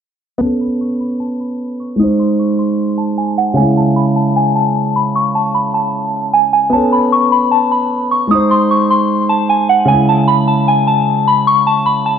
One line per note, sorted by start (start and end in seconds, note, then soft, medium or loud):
0.38 1.94 B3 medium
0.38 1.96 C#4 medium
0.38 0.59 A5 loud
0.45 1.98 A4 medium
0.61 0.78 B5 medium
0.81 0.98 C#6 medium
1.01 1.18 B5 medium
1.20 1.38 A5 medium
1.40 1.77 B5 medium
1.80 1.97 C#6 medium
1.96 3.52 G#3 medium
1.96 3.54 D#4 medium
1.96 2.17 D#6 medium
2.03 3.56 C5 medium
2.19 2.37 C6 medium
2.39 2.56 C#6 medium
2.59 2.96 C6 medium
2.98 3.15 A5 medium
3.18 3.35 G#5 medium
3.38 3.55 F#5 medium
3.54 6.67 C#3 medium
3.54 6.69 G#3 medium
3.54 3.74 G#5 loud
3.61 6.71 E4 medium
3.77 3.95 A5 medium
3.96 4.14 B5 medium
4.16 4.34 A5 medium
4.36 4.54 G#5 medium
4.55 4.93 A5 medium
4.96 5.13 B5 medium
5.16 5.33 C#6 medium
5.35 5.52 A5 medium
5.54 5.72 B5 medium
5.74 6.30 A5 medium
6.33 6.51 G#5 medium
6.53 6.71 G#5 medium
6.70 8.26 B3 medium
6.70 8.28 C#4 medium
6.70 6.90 A5 loud
6.76 8.30 A4 medium
6.92 7.10 B5 medium
7.12 7.30 C#6 medium
7.32 7.49 B5 medium
7.51 7.69 A5 medium
7.72 8.09 B5 medium
8.11 8.29 C#6 medium
8.27 9.84 G#3 medium
8.27 9.86 D#4 medium
8.27 8.48 D#6 medium
8.34 9.87 C5 medium
8.51 8.68 C6 medium
8.71 8.88 C#6 medium
8.90 9.27 C6 medium
9.29 9.47 A5 medium
9.49 9.67 G#5 medium
9.69 9.87 F#5 medium
9.85 12.19 C#3 medium
9.85 12.19 G#3 medium
9.85 10.06 G#5 loud
9.92 12.19 E4 medium
10.09 10.26 A5 medium
10.28 10.45 B5 medium
10.48 10.65 A5 medium
10.68 10.85 G#5 medium
10.87 11.25 A5 medium
11.28 11.45 B5 medium
11.47 11.64 C#6 loud
11.67 11.84 A5 medium
11.86 12.03 B5 medium
12.06 12.19 A5 medium